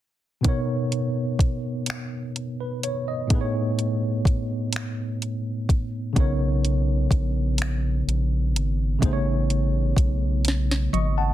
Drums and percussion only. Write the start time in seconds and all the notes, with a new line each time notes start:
0.44 kick, closed hi-hat
0.92 closed hi-hat
1.39 kick, closed hi-hat
1.86 finger snap, closed hi-hat
2.36 closed hi-hat
2.83 closed hi-hat
3.30 kick, closed hi-hat
3.79 closed hi-hat
4.25 kick, closed hi-hat
4.73 finger snap, closed hi-hat
5.22 closed hi-hat
5.69 kick, closed hi-hat
6.16 kick, closed hi-hat
6.65 closed hi-hat
7.11 kick, closed hi-hat
7.58 finger snap, closed hi-hat
8.09 closed hi-hat
8.56 closed hi-hat
9.02 kick, closed hi-hat
9.50 closed hi-hat
9.96 kick, closed hi-hat
10.45 snare, closed hi-hat
10.71 snare
10.93 closed hi-hat, high tom